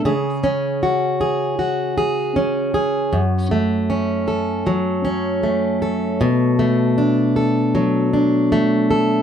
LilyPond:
\new Staff \with { instrumentName = "Steel-string acoustic guitar" } { \time 4/4 \key fis \minor \tempo 4 = 78 <cis gis'>8 cis'8 fis'8 gis'8 fis'8 gis'8 cis'8 gis'8 | fis,8 a8 cis'8 a'8 fis8 cis'8 a8 a'8 | b,8 a8 d'8 a'8 fis8 d'8 a8 a'8 | }